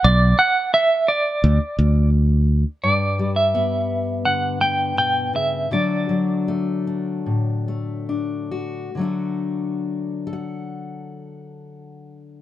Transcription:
0.04 B1 D5
0.39 F#5
0.74 E5
1.08 D5
1.44 D2
1.79 D2
2.83 G2 D5
3.19 G3
3.36 E5
3.55 B3
4.25 D3 F#5
4.61 B3 G5
4.97 B2 G5
5.33 C#3 E5
5.71 D3 F#3 A3 D4 F#4 D5
6.09 F#3
6.48 A3
6.87 D4
7.26 A2
7.68 A3
8.09 D4
8.51 F#4
8.95 D3 F#3
8.99 A3 D4
9.03 F#4
10.27 A4
10.33 F#5

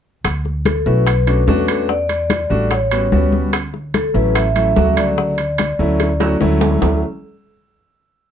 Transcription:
0.24 D2, high bongo, high conga, high timbale
0.45 high bongo, high conga
0.65 A4, high bongo, high conga, high timbale
0.86 B1 A3 C#4 E4 F#4 B4, high bongo, high conga
1.07 high bongo, high conga, high timbale
1.27 A3 C#4 D4 F#4, high conga, high timbale
1.47 E2 A3 C#4 D4 F#4, high bongo, low bongo, high conga, low timbale
1.68 high bongo, high timbale
1.89 D5, high bongo, high conga
2.09 high bongo, high conga, high timbale
2.30 high bongo, high conga, high timbale
2.50 A1 G3 A3 D4 F#4, high bongo, high conga
2.71 C#5, high bongo, high conga, high timbale
2.91 G3 B3 C#4 F#4, high conga, high timbale
3.12 D2 G3 B3 C#4 F#4, high bongo, low bongo, high conga
3.32 high bongo, high conga
3.53 high bongo, high conga, high timbale
3.74 high bongo, high conga
3.94 A4, high bongo, high conga, high timbale
4.14 A1 F#3 A3 C#4 E4 B4, high bongo, high conga
4.35 E5, high bongo, high conga, high timbale
4.55 F#3 A3 C#4 E4 E5, high conga, high timbale
4.76 D2 C#3 F#3 A3 F#4, high bongo, low bongo, high conga, low timbale
4.97 D5, high bongo, high conga, high timbale
5.18 high bongo, high conga
5.38 high bongo, high conga, high timbale
5.58 high bongo, high conga, high timbale
5.79 D2 F#3 A3 C#4 E4, high bongo, high conga
6.00 high bongo, high conga, high timbale
6.20 F#3 A3 C#4 F#4, high bongo, high conga, high timbale
6.41 D2 F#3 A3 C#4 E4, low bongo, high conga
6.61 low bongo, high conga, low timbale
6.82 D2 F#3 A3 C#4 E4, low bongo, low conga, low timbale

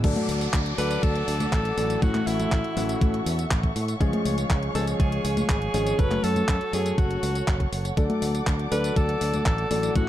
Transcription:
0.04 D2 F#3 A3 D4 A4 D5 F#5 D6, kick, closed hi-hat, crash, tambourine, downlifter
0.16 closed hi-hat, high conga
0.29 D2, open hi-hat, tambourine
0.41 closed hi-hat, tambourine
0.53 D2, kick, clap, closed hi-hat, tambourine
0.66 closed hi-hat
0.78 D2 F#3 A3 D4 A4 B4, open hi-hat, tambourine
0.91 closed hi-hat, tambourine
1.03 D2 A4, kick, closed hi-hat, tambourine
1.16 closed hi-hat
1.28 D2, open hi-hat, tambourine
1.40 closed hi-hat, tambourine, high conga
1.53 A1 A4, kick, clap, closed hi-hat, tambourine
1.65 closed hi-hat
1.77 A1 A2 F#3 A3 D4 A4, open hi-hat, tambourine
1.90 closed hi-hat, tambourine
2.02 A2 E3 A3 C#4 F#4 E5 C#6, kick, closed hi-hat, tambourine
2.15 clap, closed hi-hat, high conga
2.27 A1 E4, open hi-hat, tambourine
2.40 closed hi-hat, tambourine, high conga
2.52 A1, kick, clap, closed hi-hat, tambourine
2.64 closed hi-hat
2.77 A1 A2 E3 A3 C#4 F#4, open hi-hat, tambourine
2.89 closed hi-hat, tambourine
3.01 A2, kick, closed hi-hat, tambourine
3.14 closed hi-hat
3.26 E2, open hi-hat, tambourine
3.39 closed hi-hat, tambourine
3.51 A1, kick, clap, closed hi-hat, tambourine
3.63 kick, closed hi-hat
3.76 A2, open hi-hat, tambourine
3.88 closed hi-hat, tambourine
4.00 C#2 F3 G#3 C#4 G#4 C#5 F5, kick, closed hi-hat, tambourine
4.13 closed hi-hat, high conga
4.25 C#2, open hi-hat, tambourine
4.38 closed hi-hat, tambourine
4.50 C#2, kick, clap, closed hi-hat, tambourine
4.63 closed hi-hat
4.75 C#2 F3 G#3 C#4 G#4 A4, open hi-hat, tambourine
4.87 closed hi-hat, tambourine
5.00 C#2 G#4, kick, closed hi-hat, tambourine
5.12 closed hi-hat
5.25 C#2, open hi-hat, tambourine
5.37 closed hi-hat, tambourine, high conga
5.49 G#1 G#4, kick, clap, closed hi-hat, tambourine
5.62 closed hi-hat
5.74 G#1 F3 G#3 C#4 G#4, open hi-hat, tambourine
5.87 closed hi-hat, tambourine
5.99 F#1 F#3 A3 C#4 A4 B4 F#5, kick, closed hi-hat, tambourine
6.11 clap, closed hi-hat, high conga
6.24 F#2 A4, open hi-hat, tambourine
6.36 closed hi-hat, tambourine, high conga
6.48 F#2, kick, clap, closed hi-hat, tambourine
6.61 closed hi-hat
6.73 F#2 F#3 A3 C#4 G#4 A4, open hi-hat, tambourine
6.86 closed hi-hat, tambourine
6.98 F#1 F#4, kick, closed hi-hat, tambourine
7.11 closed hi-hat
7.23 C#2, open hi-hat, tambourine
7.35 closed hi-hat, tambourine
7.48 F#1, kick, clap, closed hi-hat, tambourine
7.60 kick, closed hi-hat
7.72 F#1, open hi-hat, tambourine
7.85 closed hi-hat, tambourine
7.97 D2 F#3 A3 D4 A4 D5 D6, kick, closed hi-hat, tambourine
8.10 closed hi-hat, high conga
8.22 D2, open hi-hat, tambourine
8.35 closed hi-hat, tambourine
8.47 D2, kick, clap, closed hi-hat, tambourine
8.59 closed hi-hat
8.72 D2 F#3 A3 D4 A4 B4, open hi-hat, tambourine
8.84 closed hi-hat, tambourine
8.96 D2 A4, kick, closed hi-hat, tambourine
9.09 closed hi-hat
9.21 D2, open hi-hat, tambourine
9.34 closed hi-hat, tambourine, high conga
9.46 A1 A4, kick, clap, closed hi-hat, tambourine
9.58 closed hi-hat
9.71 A1 A2 F#3 A3 D4 A4, open hi-hat, tambourine
9.83 closed hi-hat, tambourine
9.96 A2 E3 A3 C#4 F#4 E5 C#6, kick, closed hi-hat, tambourine

